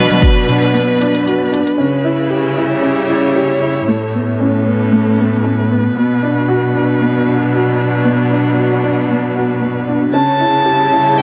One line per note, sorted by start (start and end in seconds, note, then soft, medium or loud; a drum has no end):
0.00 0.13 B2 medium
0.00 1.79 B2 medium
0.00 1.78 F#3 medium
0.00 0.74 B3 loud
0.00 0.48 D4 loud
0.00 1.79 D4 medium
0.00 0.22 F#4 medium
0.00 1.27 B4 medium
0.00 2.61 B4 medium
0.10 closed hi-hat soft
0.10 mid tom medium
0.22 0.47 F#4 medium
0.22 kick medium
0.22 closed hi-hat soft
0.48 0.65 B2 medium
0.48 0.73 D4 medium
0.48 closed hi-hat medium
0.63 closed hi-hat soft
0.74 0.99 B3 medium
0.74 closed hi-hat soft
1.00 1.25 D4 loud
1.00 closed hi-hat medium
1.15 closed hi-hat soft
1.26 1.51 F#4 medium
1.26 closed hi-hat soft
1.52 1.67 D4 medium
1.52 closed hi-hat medium
1.67 closed hi-hat soft
1.78 3.85 C#3 medium
1.78 3.89 C#3 medium
1.78 2.03 C#4 medium
1.96 4.71 E4 medium
2.04 2.29 E4 medium
2.30 2.56 G4 medium
2.37 3.88 G3 medium
2.57 2.72 E4 medium
2.72 4.71 C#5 medium
2.82 3.08 C#4 medium
3.09 3.34 E4 medium
3.36 3.60 G4 medium
3.62 3.87 E4 medium
3.87 5.96 A2 medium
3.87 5.94 A2 medium
3.87 4.13 A3 medium
4.15 4.39 B3 medium
4.36 10.97 B4 medium
4.40 4.65 C#4 medium
4.40 5.96 C#4 medium
4.55 5.96 A3 medium
4.67 4.91 B3 medium
4.92 5.17 A3 medium
5.19 5.43 B3 medium
5.44 5.69 C#4 medium
5.71 5.85 B3 medium
5.96 10.14 B2 medium
5.96 10.11 B2 medium
5.96 6.21 B3 medium
6.23 6.47 D4 medium
6.39 10.14 F#3 medium
6.48 6.73 F#4 medium
6.75 6.99 D4 medium
7.01 7.25 B3 medium
7.12 10.13 D4 medium
7.27 7.51 D4 medium
7.53 7.78 F#4 medium
7.79 8.04 D4 medium
8.05 8.30 B3 medium
8.31 8.56 D4 medium
8.57 8.82 F#4 medium
8.83 8.98 D4 medium
9.10 9.34 B3 medium
9.36 9.50 F#4 medium
9.61 9.86 B3 medium
9.87 10.02 D4 medium
10.13 11.22 C#3 medium
10.13 10.38 C#4 medium
10.13 11.20 A5 loud
10.40 10.65 E4 medium
10.62 11.22 G3 medium
10.62 11.22 E4 medium
10.62 10.91 G4 medium
10.84 11.22 C#5 medium
10.92 11.17 E4 medium
11.18 11.22 C#4 medium
11.18 11.22 G5 medium